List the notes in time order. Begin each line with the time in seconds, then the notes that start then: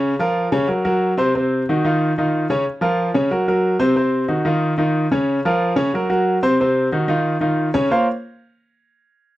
Already playing: C#3 C#4 C#5
0.19 F3 F4 A#4
0.52 C#3 C#4 C#5
0.68 F#3 F#4 A#4
0.85 F#3 F#4 A#4
1.17 C3 C4 C5
1.35 C3 C4 C5
1.69 D#3 D#4 F#4
1.85 D#3 D#4 F4
2.18 D#3 D#4 F4
2.50 C#3 C#4 C#5
2.81 F3 F4 A#4
3.14 C#3 C#4 C#5
3.31 F#3 F#4 A#4
3.48 F#3 F#4 A#4
3.79 C3 C4 C5
3.96 C3 C4 C5
4.28 D#3 D#4 F#4
4.45 D#3 D#4 F4
4.78 D#3 D#4 F4
5.11 C#3 C#4 C#5
5.45 F3 F4 A#4
5.76 C#3 C#4 C#5
5.94 F#3 F#4 A#4
6.10 F#3 F#4 A#4
6.43 C3 C4 C5
6.60 C3 C4 C5
6.92 D#3 D#4 F#4
7.08 D#3 D#4 F4
7.41 D#3 D#4 F4
7.74 C#3 C#4 C#5
7.90 A#3 F4 A#4 C5 C#5 F5